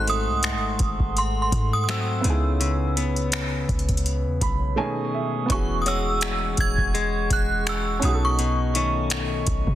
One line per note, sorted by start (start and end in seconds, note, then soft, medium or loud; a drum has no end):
0.00 0.29 G#1 loud
0.00 2.32 G#2 medium
0.00 0.11 D#3 medium
0.00 2.19 C4 medium
0.00 2.20 D#4 medium
0.00 2.22 F#4 medium
0.00 2.21 A4 medium
0.00 2.23 A4 medium
0.00 2.22 F#5 medium
0.00 2.22 C6 medium
0.07 1.88 A3 medium
0.07 1.20 D#6 loud
0.07 closed hi-hat medium
0.27 0.55 C2 loud
0.43 finger snap loud
0.43 closed hi-hat medium
0.54 0.79 G#1 loud
0.79 0.99 G#1 loud
0.79 kick medium
0.79 closed hi-hat medium
1.00 1.50 G#1 loud
1.00 kick medium
1.17 1.40 C6 medium
1.17 closed hi-hat medium
1.42 1.74 C6 medium
1.52 2.22 G#2 loud
1.52 kick loud
1.52 closed hi-hat medium
1.73 1.78 D#6 medium
1.84 1.89 D#6 medium
1.89 2.32 F#3 medium
1.89 2.33 A3 medium
1.89 2.33 C4 medium
1.89 4.75 E6 medium
1.89 finger snap loud
1.89 closed hi-hat medium
2.21 3.65 C#2 loud
2.21 2.59 C#3 medium
2.21 4.72 B3 medium
2.21 4.73 D#4 medium
2.21 4.75 B4 medium
2.21 4.75 C#5 medium
2.21 closed hi-hat medium
2.27 4.75 E4 medium
2.27 4.76 G#4 medium
2.60 4.77 C#3 medium
2.60 closed hi-hat medium
2.97 5.86 B3 medium
2.97 closed hi-hat medium
3.16 closed hi-hat soft
3.32 finger snap loud
3.32 closed hi-hat medium
3.69 3.88 C#2 loud
3.69 kick medium
3.69 closed hi-hat soft
3.79 closed hi-hat soft
3.89 4.27 C#2 loud
3.89 kick medium
3.89 closed hi-hat soft
3.97 closed hi-hat medium
4.06 closed hi-hat medium
4.25 4.41 E2 medium
4.41 4.76 B1 loud
4.41 4.75 B5 medium
4.41 kick loud
4.41 closed hi-hat medium
4.76 5.58 B2 medium
4.76 5.50 D#3 medium
4.76 5.49 A3 medium
4.76 5.47 C#4 medium
4.76 5.49 G#5 medium
4.76 5.12 G#5 medium
4.76 5.49 C#6 medium
4.76 5.49 D#6 medium
4.80 5.51 G#4 medium
5.14 5.48 E5 medium
5.46 7.97 B3 medium
5.46 7.98 C#4 medium
5.50 6.54 E1 loud
5.50 8.11 E3 medium
5.50 8.00 F#4 medium
5.50 8.01 G#4 medium
5.50 8.01 F#5 medium
5.50 9.75 C#6 medium
5.50 5.79 C#6 loud
5.50 kick loud
5.50 closed hi-hat medium
5.54 8.01 G#4 medium
5.82 5.87 D#6 medium
5.86 6.93 G#3 medium
5.86 8.42 C#4 medium
5.86 9.37 F#4 medium
5.86 7.71 C#5 medium
5.86 6.61 E6 loud
5.86 closed hi-hat medium
6.21 finger snap loud
6.21 closed hi-hat medium
6.57 6.77 D#1 loud
6.57 7.34 G#6 loud
6.57 kick medium
6.57 closed hi-hat medium
6.78 7.29 E1 loud
6.78 kick medium
6.94 8.11 G#3 medium
6.94 closed hi-hat medium
7.30 8.00 E1 loud
7.30 7.65 F#6 medium
7.30 kick loud
7.30 closed hi-hat medium
7.67 7.83 E6 medium
7.67 finger snap loud
7.67 closed hi-hat medium
7.99 9.44 B1 loud
7.99 8.38 B2 medium
7.99 9.75 C#4 medium
7.99 9.75 D#4 medium
7.99 9.75 A4 medium
7.99 9.75 D#5 medium
7.99 closed hi-hat medium
8.05 9.75 F#4 medium
8.05 8.12 G#4 medium
8.05 8.24 D#6 medium
8.14 9.75 A4 medium
8.25 8.92 C#6 medium
8.39 9.75 B2 medium
8.39 closed hi-hat medium
8.75 9.75 D#3 medium
8.75 9.75 A3 medium
8.75 9.75 C#4 medium
8.75 closed hi-hat medium
9.10 finger snap loud
9.10 closed hi-hat medium
9.47 9.66 B1 loud
9.47 kick loud
9.47 closed hi-hat medium
9.67 9.75 B2 loud
9.67 kick medium